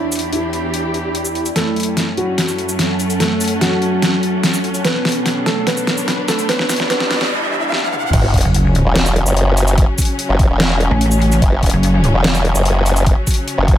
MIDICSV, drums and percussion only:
0, 0, Header, 1, 2, 480
1, 0, Start_track
1, 0, Tempo, 410959
1, 1820, Time_signature, 4, 2, 24, 8
1, 16096, End_track
2, 0, Start_track
2, 0, Title_t, "Drums"
2, 140, Note_on_c, 9, 42, 45
2, 140, Note_on_c, 9, 82, 69
2, 180, Note_off_c, 9, 42, 0
2, 180, Note_on_c, 9, 42, 58
2, 220, Note_off_c, 9, 42, 0
2, 220, Note_on_c, 9, 42, 72
2, 257, Note_off_c, 9, 82, 0
2, 337, Note_off_c, 9, 42, 0
2, 380, Note_on_c, 9, 42, 70
2, 497, Note_off_c, 9, 42, 0
2, 620, Note_on_c, 9, 42, 48
2, 737, Note_off_c, 9, 42, 0
2, 860, Note_on_c, 9, 42, 68
2, 977, Note_off_c, 9, 42, 0
2, 1100, Note_on_c, 9, 42, 49
2, 1217, Note_off_c, 9, 42, 0
2, 1340, Note_on_c, 9, 42, 71
2, 1457, Note_off_c, 9, 42, 0
2, 1461, Note_on_c, 9, 82, 68
2, 1577, Note_off_c, 9, 82, 0
2, 1580, Note_on_c, 9, 42, 48
2, 1697, Note_off_c, 9, 42, 0
2, 1701, Note_on_c, 9, 42, 33
2, 1701, Note_on_c, 9, 82, 44
2, 1818, Note_off_c, 9, 42, 0
2, 1818, Note_off_c, 9, 82, 0
2, 1820, Note_on_c, 9, 38, 46
2, 1820, Note_on_c, 9, 42, 77
2, 1937, Note_off_c, 9, 38, 0
2, 1937, Note_off_c, 9, 42, 0
2, 2060, Note_on_c, 9, 42, 48
2, 2100, Note_off_c, 9, 42, 0
2, 2100, Note_on_c, 9, 42, 63
2, 2140, Note_off_c, 9, 42, 0
2, 2140, Note_on_c, 9, 42, 80
2, 2257, Note_off_c, 9, 42, 0
2, 2300, Note_on_c, 9, 38, 45
2, 2300, Note_on_c, 9, 42, 73
2, 2416, Note_off_c, 9, 38, 0
2, 2416, Note_off_c, 9, 42, 0
2, 2540, Note_on_c, 9, 42, 53
2, 2656, Note_off_c, 9, 42, 0
2, 2780, Note_on_c, 9, 38, 49
2, 2780, Note_on_c, 9, 42, 75
2, 2896, Note_off_c, 9, 38, 0
2, 2896, Note_off_c, 9, 42, 0
2, 2900, Note_on_c, 9, 82, 52
2, 3017, Note_off_c, 9, 82, 0
2, 3019, Note_on_c, 9, 42, 51
2, 3136, Note_off_c, 9, 42, 0
2, 3140, Note_on_c, 9, 82, 77
2, 3257, Note_off_c, 9, 82, 0
2, 3259, Note_on_c, 9, 38, 55
2, 3259, Note_on_c, 9, 42, 77
2, 3376, Note_off_c, 9, 38, 0
2, 3376, Note_off_c, 9, 42, 0
2, 3499, Note_on_c, 9, 42, 52
2, 3499, Note_on_c, 9, 82, 50
2, 3616, Note_off_c, 9, 42, 0
2, 3616, Note_off_c, 9, 82, 0
2, 3620, Note_on_c, 9, 42, 35
2, 3620, Note_on_c, 9, 82, 48
2, 3737, Note_off_c, 9, 42, 0
2, 3737, Note_off_c, 9, 82, 0
2, 3739, Note_on_c, 9, 38, 57
2, 3739, Note_on_c, 9, 42, 77
2, 3856, Note_off_c, 9, 38, 0
2, 3856, Note_off_c, 9, 42, 0
2, 3979, Note_on_c, 9, 42, 49
2, 3979, Note_on_c, 9, 82, 75
2, 4020, Note_off_c, 9, 42, 0
2, 4020, Note_on_c, 9, 42, 66
2, 4060, Note_off_c, 9, 42, 0
2, 4060, Note_on_c, 9, 42, 77
2, 4096, Note_off_c, 9, 82, 0
2, 4176, Note_off_c, 9, 42, 0
2, 4220, Note_on_c, 9, 38, 59
2, 4220, Note_on_c, 9, 42, 80
2, 4337, Note_off_c, 9, 38, 0
2, 4337, Note_off_c, 9, 42, 0
2, 4460, Note_on_c, 9, 42, 54
2, 4577, Note_off_c, 9, 42, 0
2, 4700, Note_on_c, 9, 38, 64
2, 4700, Note_on_c, 9, 42, 78
2, 4817, Note_off_c, 9, 38, 0
2, 4817, Note_off_c, 9, 42, 0
2, 4940, Note_on_c, 9, 42, 52
2, 5057, Note_off_c, 9, 42, 0
2, 5180, Note_on_c, 9, 38, 67
2, 5180, Note_on_c, 9, 42, 85
2, 5297, Note_off_c, 9, 38, 0
2, 5297, Note_off_c, 9, 42, 0
2, 5300, Note_on_c, 9, 82, 71
2, 5417, Note_off_c, 9, 82, 0
2, 5420, Note_on_c, 9, 42, 51
2, 5536, Note_off_c, 9, 42, 0
2, 5541, Note_on_c, 9, 42, 36
2, 5541, Note_on_c, 9, 82, 48
2, 5657, Note_off_c, 9, 42, 0
2, 5657, Note_off_c, 9, 82, 0
2, 5659, Note_on_c, 9, 38, 68
2, 5659, Note_on_c, 9, 42, 77
2, 5776, Note_off_c, 9, 38, 0
2, 5776, Note_off_c, 9, 42, 0
2, 5900, Note_on_c, 9, 38, 73
2, 5900, Note_on_c, 9, 42, 49
2, 5940, Note_off_c, 9, 42, 0
2, 5940, Note_on_c, 9, 42, 64
2, 5979, Note_off_c, 9, 42, 0
2, 5979, Note_on_c, 9, 42, 80
2, 6016, Note_off_c, 9, 38, 0
2, 6096, Note_off_c, 9, 42, 0
2, 6139, Note_on_c, 9, 38, 71
2, 6139, Note_on_c, 9, 42, 75
2, 6256, Note_off_c, 9, 38, 0
2, 6256, Note_off_c, 9, 42, 0
2, 6380, Note_on_c, 9, 38, 79
2, 6380, Note_on_c, 9, 42, 54
2, 6496, Note_off_c, 9, 38, 0
2, 6496, Note_off_c, 9, 42, 0
2, 6620, Note_on_c, 9, 38, 79
2, 6620, Note_on_c, 9, 42, 77
2, 6737, Note_off_c, 9, 38, 0
2, 6737, Note_off_c, 9, 42, 0
2, 6740, Note_on_c, 9, 82, 51
2, 6857, Note_off_c, 9, 82, 0
2, 6860, Note_on_c, 9, 38, 82
2, 6860, Note_on_c, 9, 42, 55
2, 6976, Note_off_c, 9, 38, 0
2, 6976, Note_off_c, 9, 42, 0
2, 6980, Note_on_c, 9, 82, 76
2, 7097, Note_off_c, 9, 82, 0
2, 7100, Note_on_c, 9, 38, 86
2, 7100, Note_on_c, 9, 42, 81
2, 7216, Note_off_c, 9, 38, 0
2, 7216, Note_off_c, 9, 42, 0
2, 7340, Note_on_c, 9, 38, 87
2, 7340, Note_on_c, 9, 42, 54
2, 7340, Note_on_c, 9, 82, 48
2, 7456, Note_off_c, 9, 38, 0
2, 7456, Note_off_c, 9, 42, 0
2, 7456, Note_off_c, 9, 82, 0
2, 7460, Note_on_c, 9, 42, 36
2, 7460, Note_on_c, 9, 82, 46
2, 7577, Note_off_c, 9, 42, 0
2, 7577, Note_off_c, 9, 82, 0
2, 7580, Note_on_c, 9, 38, 91
2, 7580, Note_on_c, 9, 42, 77
2, 7696, Note_off_c, 9, 38, 0
2, 7696, Note_off_c, 9, 42, 0
2, 7701, Note_on_c, 9, 38, 79
2, 7817, Note_off_c, 9, 38, 0
2, 7820, Note_on_c, 9, 38, 97
2, 7820, Note_on_c, 9, 42, 48
2, 7820, Note_on_c, 9, 82, 79
2, 7860, Note_off_c, 9, 42, 0
2, 7860, Note_on_c, 9, 42, 64
2, 7900, Note_off_c, 9, 42, 0
2, 7900, Note_on_c, 9, 42, 78
2, 7936, Note_off_c, 9, 38, 0
2, 7936, Note_off_c, 9, 82, 0
2, 7941, Note_on_c, 9, 38, 83
2, 8017, Note_off_c, 9, 42, 0
2, 8057, Note_off_c, 9, 38, 0
2, 8060, Note_on_c, 9, 38, 93
2, 8060, Note_on_c, 9, 42, 75
2, 8176, Note_off_c, 9, 38, 0
2, 8176, Note_off_c, 9, 42, 0
2, 8181, Note_on_c, 9, 38, 88
2, 8298, Note_off_c, 9, 38, 0
2, 8300, Note_on_c, 9, 38, 98
2, 8300, Note_on_c, 9, 42, 50
2, 8417, Note_off_c, 9, 38, 0
2, 8417, Note_off_c, 9, 42, 0
2, 8421, Note_on_c, 9, 38, 87
2, 8538, Note_off_c, 9, 38, 0
2, 9020, Note_on_c, 9, 38, 64
2, 9137, Note_off_c, 9, 38, 0
2, 9141, Note_on_c, 9, 48, 60
2, 9257, Note_off_c, 9, 48, 0
2, 9260, Note_on_c, 9, 47, 84
2, 9377, Note_off_c, 9, 47, 0
2, 9381, Note_on_c, 9, 45, 83
2, 9498, Note_off_c, 9, 45, 0
2, 9500, Note_on_c, 9, 36, 119
2, 9500, Note_on_c, 9, 42, 83
2, 9500, Note_on_c, 9, 49, 104
2, 9616, Note_off_c, 9, 36, 0
2, 9617, Note_off_c, 9, 42, 0
2, 9617, Note_off_c, 9, 49, 0
2, 9740, Note_on_c, 9, 36, 62
2, 9740, Note_on_c, 9, 42, 50
2, 9780, Note_off_c, 9, 42, 0
2, 9780, Note_on_c, 9, 42, 68
2, 9820, Note_off_c, 9, 42, 0
2, 9820, Note_on_c, 9, 42, 85
2, 9856, Note_off_c, 9, 36, 0
2, 9937, Note_off_c, 9, 42, 0
2, 9980, Note_on_c, 9, 42, 85
2, 10097, Note_off_c, 9, 42, 0
2, 10220, Note_on_c, 9, 42, 55
2, 10337, Note_off_c, 9, 42, 0
2, 10460, Note_on_c, 9, 38, 117
2, 10460, Note_on_c, 9, 42, 82
2, 10577, Note_off_c, 9, 38, 0
2, 10577, Note_off_c, 9, 42, 0
2, 10581, Note_on_c, 9, 82, 55
2, 10698, Note_off_c, 9, 82, 0
2, 10700, Note_on_c, 9, 42, 55
2, 10817, Note_off_c, 9, 42, 0
2, 10821, Note_on_c, 9, 82, 79
2, 10937, Note_off_c, 9, 82, 0
2, 10939, Note_on_c, 9, 42, 86
2, 11056, Note_off_c, 9, 42, 0
2, 11180, Note_on_c, 9, 42, 54
2, 11180, Note_on_c, 9, 82, 52
2, 11296, Note_off_c, 9, 42, 0
2, 11296, Note_off_c, 9, 82, 0
2, 11301, Note_on_c, 9, 42, 37
2, 11301, Note_on_c, 9, 82, 51
2, 11417, Note_off_c, 9, 42, 0
2, 11417, Note_off_c, 9, 82, 0
2, 11420, Note_on_c, 9, 36, 122
2, 11420, Note_on_c, 9, 42, 82
2, 11536, Note_off_c, 9, 36, 0
2, 11536, Note_off_c, 9, 42, 0
2, 11660, Note_on_c, 9, 36, 65
2, 11660, Note_on_c, 9, 42, 52
2, 11660, Note_on_c, 9, 82, 77
2, 11700, Note_off_c, 9, 42, 0
2, 11700, Note_on_c, 9, 42, 70
2, 11740, Note_off_c, 9, 42, 0
2, 11740, Note_on_c, 9, 42, 87
2, 11776, Note_off_c, 9, 36, 0
2, 11776, Note_off_c, 9, 82, 0
2, 11856, Note_off_c, 9, 42, 0
2, 11900, Note_on_c, 9, 42, 85
2, 12016, Note_off_c, 9, 42, 0
2, 12139, Note_on_c, 9, 36, 110
2, 12139, Note_on_c, 9, 42, 57
2, 12256, Note_off_c, 9, 36, 0
2, 12256, Note_off_c, 9, 42, 0
2, 12380, Note_on_c, 9, 38, 127
2, 12380, Note_on_c, 9, 42, 81
2, 12497, Note_off_c, 9, 38, 0
2, 12497, Note_off_c, 9, 42, 0
2, 12620, Note_on_c, 9, 42, 53
2, 12737, Note_off_c, 9, 42, 0
2, 12860, Note_on_c, 9, 42, 82
2, 12976, Note_off_c, 9, 42, 0
2, 12981, Note_on_c, 9, 82, 75
2, 13097, Note_off_c, 9, 82, 0
2, 13100, Note_on_c, 9, 42, 54
2, 13217, Note_off_c, 9, 42, 0
2, 13221, Note_on_c, 9, 42, 37
2, 13221, Note_on_c, 9, 82, 50
2, 13338, Note_off_c, 9, 42, 0
2, 13338, Note_off_c, 9, 82, 0
2, 13340, Note_on_c, 9, 36, 122
2, 13340, Note_on_c, 9, 42, 80
2, 13456, Note_off_c, 9, 36, 0
2, 13457, Note_off_c, 9, 42, 0
2, 13580, Note_on_c, 9, 36, 64
2, 13580, Note_on_c, 9, 42, 51
2, 13620, Note_off_c, 9, 42, 0
2, 13620, Note_on_c, 9, 42, 68
2, 13660, Note_off_c, 9, 42, 0
2, 13660, Note_on_c, 9, 42, 81
2, 13696, Note_off_c, 9, 36, 0
2, 13777, Note_off_c, 9, 42, 0
2, 13820, Note_on_c, 9, 42, 79
2, 13937, Note_off_c, 9, 42, 0
2, 14060, Note_on_c, 9, 42, 53
2, 14177, Note_off_c, 9, 42, 0
2, 14300, Note_on_c, 9, 38, 121
2, 14300, Note_on_c, 9, 42, 80
2, 14417, Note_off_c, 9, 38, 0
2, 14417, Note_off_c, 9, 42, 0
2, 14421, Note_on_c, 9, 82, 52
2, 14538, Note_off_c, 9, 82, 0
2, 14540, Note_on_c, 9, 42, 54
2, 14657, Note_off_c, 9, 42, 0
2, 14661, Note_on_c, 9, 82, 73
2, 14778, Note_off_c, 9, 82, 0
2, 14780, Note_on_c, 9, 42, 85
2, 14897, Note_off_c, 9, 42, 0
2, 15020, Note_on_c, 9, 42, 53
2, 15020, Note_on_c, 9, 82, 51
2, 15137, Note_off_c, 9, 42, 0
2, 15137, Note_off_c, 9, 82, 0
2, 15141, Note_on_c, 9, 42, 36
2, 15141, Note_on_c, 9, 82, 50
2, 15258, Note_off_c, 9, 42, 0
2, 15258, Note_off_c, 9, 82, 0
2, 15260, Note_on_c, 9, 36, 127
2, 15260, Note_on_c, 9, 42, 76
2, 15376, Note_off_c, 9, 36, 0
2, 15377, Note_off_c, 9, 42, 0
2, 15500, Note_on_c, 9, 36, 64
2, 15500, Note_on_c, 9, 42, 48
2, 15500, Note_on_c, 9, 82, 78
2, 15540, Note_off_c, 9, 42, 0
2, 15540, Note_on_c, 9, 42, 64
2, 15580, Note_off_c, 9, 42, 0
2, 15580, Note_on_c, 9, 42, 79
2, 15616, Note_off_c, 9, 36, 0
2, 15617, Note_off_c, 9, 82, 0
2, 15697, Note_off_c, 9, 42, 0
2, 15740, Note_on_c, 9, 42, 77
2, 15857, Note_off_c, 9, 42, 0
2, 15980, Note_on_c, 9, 36, 107
2, 15980, Note_on_c, 9, 42, 52
2, 16096, Note_off_c, 9, 36, 0
2, 16096, Note_off_c, 9, 42, 0
2, 16096, End_track
0, 0, End_of_file